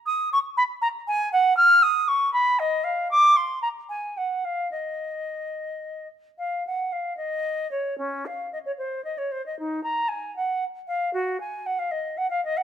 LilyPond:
\new Staff \with { instrumentName = "Flute" } { \time 3/4 \key ees \minor \tempo 4 = 115 ees'''8 des'''8 ces'''8 bes''8 aes''8 ges''8 | f'''8 ees'''8 des'''8 ces'''8 ees''8 f''8 | d'''8 c'''8 bes''8 aes''8 ges''8 f''8 | ees''2~ ees''8 r8 |
\key ees \dorian f''8 ges''8 f''8 ees''4 des''8 | des'8 f''8 ees''16 des''16 c''8 ees''16 des''16 c''16 ees''16 | ees'8 bes''8 aes''8 ges''4 f''8 | ges'8 aes''8 ges''16 f''16 ees''8 ges''16 f''16 ees''16 ges''16 | }